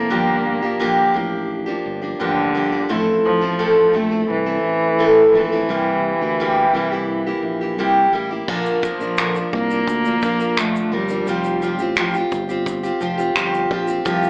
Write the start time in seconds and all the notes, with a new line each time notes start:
Already playing: F1 A#3 C4 E4 A4
0.10 G1 G2 D3 F3 A#3 D4 G4
0.62 A#1 F3 A#3 D4 G4
0.80 G2 D3 F3 A#3 D4 G4
1.14 A1 F3 A#3 D4 G4
1.66 F3 A#3 D4 G4
1.86 G1
2.02 F3 A#3 D4 G4
2.20 A1 G2 D3 F3 A#3 D4 G4
2.55 G1 F3 A#3 D4 G4
2.72 F3 A#3 D4 G4
2.89 A1 A2 F3 A3 C4 E4 A4
3.25 F3
3.41 A1 A3 C4 E4 A4
3.59 A2 F3 A3 C4 E4 A4
3.93 A#1 A3 C4 E4 A4
4.11 A3 C4 E4 A4
4.30 C2 E3
4.46 A3 C4 E4 A4
4.64 A1
4.99 A2 A3 C4 E4 A4
5.34 A#1 E3 A3 C4 E4 A4
5.52 A3 C4 E4 A4
5.69 C2 C3 G3 A#3 E4 G4
6.21 D2 A#3 E4 G4
6.40 C3 G3 A#3 E4 G4
6.74 C2 G3 A#3 E4 G4
6.92 A#3 E4 G4
7.26 A#3 E4 G4
7.43 A#1
7.61 A#3 E4 G4
7.78 C2 C3 G3 A#3 E4 G4
8.13 A1 G3 A#3 E4 G4
8.31 A#3 E4 G4
8.48 A#1 A#2 D3 F3 A#3 D4 A#4, kick, crash
8.66 shaker
8.82 F3 A#3 D4 A#4, kick, shaker
9.00 A#1 F3 A#3 D4 A#4, shaker
9.18 A#2 D3 F3 A#3 D4 A#4, finger snap, clap, shaker
9.35 F3 A#3 D4 A#4, shaker
9.53 C2 A#3, kick
9.70 F3 A#3 D4 A#4, shaker
9.87 D2, kick, shaker
10.05 F3 A#3 D4 A#4, shaker
10.22 A#1 F3 A#3 D4 A#4, kick, shaker
10.39 F3 A#3 D4 A#4, shaker
10.57 A#2 D3 F3 A3 D4, finger snap, clap, shaker
10.76 shaker
10.92 G1 F3 G3 A#3 D4 A#4
11.09 F3 A#3 D4 A#4, shaker
11.27 F1 F3 C4 F4 G4, shaker
11.44 shaker
11.62 F3 C4 F4 G4, shaker
11.79 A1 C4 F4 G4, shaker
11.96 F3 C4 F4 G4, finger snap, clap, shaker
12.14 C4 F4 G4, shaker
12.32 G1, kick, shaker
12.49 C4 F4 G4, shaker
12.66 kick, shaker
12.83 C4 F4 G4, shaker
13.01 F1 F3 C4 F4 G4, shaker
13.18 C4 F4 G4, shaker
13.35 G1 F3 C4 F4 G4, finger snap, clap, shaker
13.54 shaker
13.71 A#1 F3 C4 F4 G4, kick
13.88 C4 F4 G4, shaker
14.05 C2 C3 F3 A#3 F4 G4, kick, shaker
14.23 shaker